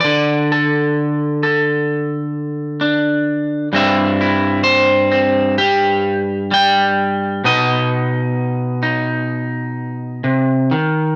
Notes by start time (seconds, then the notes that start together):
0.01 D3 D5
0.52 A4
1.43 A4
2.81 D4
3.73 G2 G3 C4 E4 E5
4.21 E4
4.64 C5
5.11 C4
5.58 G4
6.51 G3 G5
7.44 B2 B3 D#4 D#5
8.83 D#4
10.24 C3
10.71 D#3